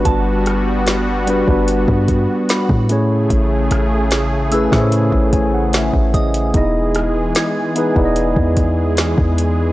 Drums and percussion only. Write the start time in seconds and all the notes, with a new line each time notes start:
0.05 kick, closed hi-hat
0.46 cross-stick, closed hi-hat
0.87 snare, closed hi-hat
1.27 closed hi-hat
1.48 kick
1.68 closed hi-hat
1.88 kick
2.08 kick, closed hi-hat
2.49 snare, closed hi-hat
2.69 kick
2.89 closed hi-hat
3.30 kick, closed hi-hat
3.71 cross-stick, closed hi-hat
4.11 snare, closed hi-hat
4.52 closed hi-hat
4.72 kick, cross-stick, snare
4.92 closed hi-hat
5.12 kick
5.33 kick, closed hi-hat
5.73 snare, closed hi-hat
5.94 kick
6.14 kick, closed hi-hat, open hi-hat
6.34 closed hi-hat
6.54 kick, closed hi-hat
6.95 cross-stick, closed hi-hat
7.35 snare, closed hi-hat
7.76 closed hi-hat
7.96 kick
8.16 closed hi-hat
8.36 kick
8.57 kick, closed hi-hat
8.97 snare, closed hi-hat
9.18 kick
9.38 closed hi-hat